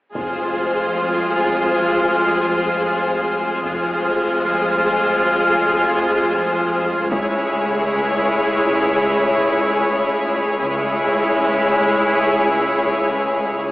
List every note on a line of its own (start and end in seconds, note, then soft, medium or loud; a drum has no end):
0.15 0.99 F1 soft
0.15 3.60 F2 soft
0.15 3.59 G#3 soft
0.15 3.59 F4 soft
0.15 3.60 G#4 soft
0.15 3.60 C5 soft
0.15 taiko soft
1.47 taiko soft
3.64 4.47 F1 soft
3.64 7.08 F2 soft
3.64 7.08 G#3 soft
3.64 7.08 F4 soft
3.64 7.09 G#4 soft
3.64 7.08 C5 soft
7.11 10.55 C#2 soft
7.11 7.95 C#2 soft
7.11 10.55 G#3 soft
7.11 10.55 E4 soft
7.11 10.56 G#4 soft
7.11 10.55 C#5 soft
7.11 taiko soft
10.58 11.42 C#2 soft
10.58 13.72 C#2 soft
10.58 13.72 G#3 soft
10.58 13.72 E4 soft
10.58 13.72 G#4 soft
10.58 13.72 C#5 soft